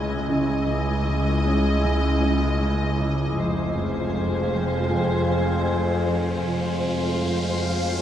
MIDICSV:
0, 0, Header, 1, 9, 480
1, 0, Start_track
1, 0, Tempo, 769231
1, 193, Time_signature, 4, 2, 24, 8
1, 5003, End_track
2, 0, Start_track
2, 0, Title_t, "Synth texture"
2, 0, Program_c, 0, 99
2, 0, Note_on_c, 0, 64, 47
2, 0, Note_on_c, 0, 75, 51
2, 0, Note_on_c, 0, 80, 48
2, 167, Note_off_c, 0, 80, 0
2, 178, Note_off_c, 0, 75, 0
2, 181, Note_off_c, 0, 64, 0
2, 185, Note_on_c, 0, 80, 49
2, 186, Note_on_c, 0, 75, 48
2, 189, Note_on_c, 0, 64, 45
2, 2084, Note_off_c, 0, 75, 0
2, 2084, Note_off_c, 0, 80, 0
2, 2086, Note_off_c, 0, 64, 0
2, 2118, Note_on_c, 0, 65, 45
2, 2119, Note_on_c, 0, 72, 49
2, 2119, Note_on_c, 0, 80, 51
2, 4011, Note_off_c, 0, 80, 0
2, 4035, Note_off_c, 0, 65, 0
2, 4036, Note_off_c, 0, 72, 0
2, 4042, Note_on_c, 0, 80, 38
2, 4047, Note_on_c, 0, 72, 49
2, 4049, Note_on_c, 0, 65, 46
2, 5003, Note_off_c, 0, 65, 0
2, 5003, Note_off_c, 0, 72, 0
2, 5003, Note_off_c, 0, 80, 0
2, 5003, End_track
3, 0, Start_track
3, 0, Title_t, "Violin section"
3, 0, Program_c, 1, 48
3, 0, Note_on_c, 1, 75, 58
3, 164, Note_off_c, 1, 75, 0
3, 195, Note_on_c, 1, 75, 57
3, 2089, Note_off_c, 1, 75, 0
3, 2114, Note_on_c, 1, 72, 49
3, 4009, Note_off_c, 1, 72, 0
3, 4037, Note_on_c, 1, 72, 35
3, 5003, Note_off_c, 1, 72, 0
3, 5003, End_track
4, 0, Start_track
4, 0, Title_t, "Viola section"
4, 0, Program_c, 2, 48
4, 0, Note_on_c, 2, 56, 52
4, 0, Note_on_c, 2, 64, 49
4, 170, Note_off_c, 2, 56, 0
4, 170, Note_off_c, 2, 64, 0
4, 197, Note_on_c, 2, 56, 44
4, 199, Note_on_c, 2, 64, 44
4, 2090, Note_off_c, 2, 56, 0
4, 2091, Note_off_c, 2, 64, 0
4, 2123, Note_on_c, 2, 65, 39
4, 2124, Note_on_c, 2, 56, 42
4, 4013, Note_off_c, 2, 65, 0
4, 4014, Note_off_c, 2, 56, 0
4, 4034, Note_on_c, 2, 56, 26
4, 4036, Note_on_c, 2, 65, 30
4, 5003, Note_off_c, 2, 56, 0
4, 5003, Note_off_c, 2, 65, 0
4, 5003, End_track
5, 0, Start_track
5, 0, Title_t, "Cello section"
5, 0, Program_c, 3, 48
5, 0, Note_on_c, 3, 49, 44
5, 99, Note_off_c, 3, 49, 0
5, 194, Note_on_c, 3, 49, 62
5, 338, Note_off_c, 3, 49, 0
5, 429, Note_on_c, 3, 49, 37
5, 574, Note_off_c, 3, 49, 0
5, 675, Note_on_c, 3, 49, 40
5, 818, Note_off_c, 3, 49, 0
5, 910, Note_on_c, 3, 61, 46
5, 1055, Note_off_c, 3, 61, 0
5, 1147, Note_on_c, 3, 49, 61
5, 1293, Note_off_c, 3, 49, 0
5, 1391, Note_on_c, 3, 61, 40
5, 1535, Note_off_c, 3, 61, 0
5, 1629, Note_on_c, 3, 49, 38
5, 1774, Note_off_c, 3, 49, 0
5, 1868, Note_on_c, 3, 49, 42
5, 2013, Note_off_c, 3, 49, 0
5, 2104, Note_on_c, 3, 41, 49
5, 2251, Note_off_c, 3, 41, 0
5, 2341, Note_on_c, 3, 41, 31
5, 2489, Note_off_c, 3, 41, 0
5, 2589, Note_on_c, 3, 41, 36
5, 2734, Note_off_c, 3, 41, 0
5, 2827, Note_on_c, 3, 53, 37
5, 2973, Note_off_c, 3, 53, 0
5, 3066, Note_on_c, 3, 41, 46
5, 3212, Note_off_c, 3, 41, 0
5, 3308, Note_on_c, 3, 53, 33
5, 3454, Note_off_c, 3, 53, 0
5, 3548, Note_on_c, 3, 41, 34
5, 3693, Note_off_c, 3, 41, 0
5, 3786, Note_on_c, 3, 41, 30
5, 3932, Note_off_c, 3, 41, 0
5, 4023, Note_on_c, 3, 41, 33
5, 4170, Note_off_c, 3, 41, 0
5, 4271, Note_on_c, 3, 41, 28
5, 4415, Note_off_c, 3, 41, 0
5, 4514, Note_on_c, 3, 41, 26
5, 4658, Note_off_c, 3, 41, 0
5, 4756, Note_on_c, 3, 53, 27
5, 4899, Note_off_c, 3, 53, 0
5, 5003, End_track
6, 0, Start_track
6, 0, Title_t, "Cello section"
6, 0, Program_c, 4, 48
6, 0, Note_on_c, 4, 37, 52
6, 165, Note_off_c, 4, 37, 0
6, 190, Note_on_c, 4, 37, 49
6, 2086, Note_off_c, 4, 37, 0
6, 2118, Note_on_c, 4, 41, 47
6, 4010, Note_off_c, 4, 41, 0
6, 4032, Note_on_c, 4, 41, 33
6, 5003, Note_off_c, 4, 41, 0
6, 5003, End_track
7, 0, Start_track
7, 0, Title_t, "Synth drone"
7, 0, Program_c, 5, 95
7, 0, Note_on_c, 5, 37, 71
7, 192, Note_off_c, 5, 37, 0
7, 200, Note_on_c, 5, 37, 60
7, 2092, Note_off_c, 5, 37, 0
7, 2115, Note_on_c, 5, 41, 64
7, 4030, Note_off_c, 5, 41, 0
7, 4037, Note_on_c, 5, 41, 62
7, 5003, Note_off_c, 5, 41, 0
7, 5003, End_track
8, 0, Start_track
8, 0, Title_t, "Double bass section"
8, 0, Program_c, 6, 48
8, 0, Note_on_c, 6, 37, 63
8, 168, Note_off_c, 6, 37, 0
8, 194, Note_on_c, 6, 37, 59
8, 2089, Note_off_c, 6, 37, 0
8, 2117, Note_on_c, 6, 29, 55
8, 4010, Note_off_c, 6, 29, 0
8, 4034, Note_on_c, 6, 29, 37
8, 5003, Note_off_c, 6, 29, 0
8, 5003, End_track
9, 0, Start_track
9, 0, Title_t, "Riser"
9, 0, Program_c, 7, 103
9, 2116, Note_on_c, 7, 60, 53
9, 5003, Note_off_c, 7, 60, 0
9, 5003, End_track
0, 0, End_of_file